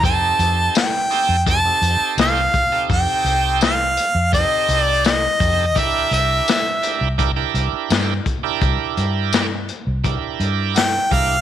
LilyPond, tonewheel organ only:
\new Staff \with { instrumentName = "Tonewheel organ" } { \time 4/4 \key f \major \tempo 4 = 84 <c' ees' g' a'>4 r8 <c' ees' g' a'>16 r16 <c' ees' g' a'>16 <c' ees' g' a'>4 r8 <c' ees' g' a'>16~ | <c' ees' g' a'>4~ <c' ees' g' a'>16 r8. <c' ees' g' a'>4 r8 <c' ees' g' a'>16 r16 | <d' e' g' bes'>4 r8 <d' e' g' bes'>16 r16 <d' e' g' bes'>16 <d' e' g' bes'>4 r8 <d' e' g' bes'>16~ | <d' e' g' bes'>4~ <d' e' g' bes'>16 r8. <d' e' g' bes'>4 r8 <d' e' g' bes'>16 r16 | }